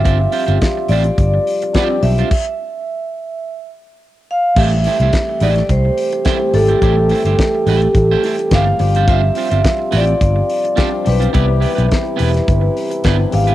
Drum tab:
CC |----------------|x---------------|x---------------|----------------|
HH |x-oxx-oxx-oxx-ox|----------------|--oxx-oxx-oxx-ox|x-oxx-oxx-oxx-ox|
SD |----o-------o---|----------------|----o--o----o---|----o-------o---|
BD |o---o---o---o---|o---------------|o---o---o---o---|o---o---o---o---|

CC |----------------|----------------|
HH |x-oxx-oxx-oxx-ox|x-oxx-oxx-oxx-ox|
SD |----o-------o---|----o--o----o---|
BD |o---o---o---o---|o---o---o---o---|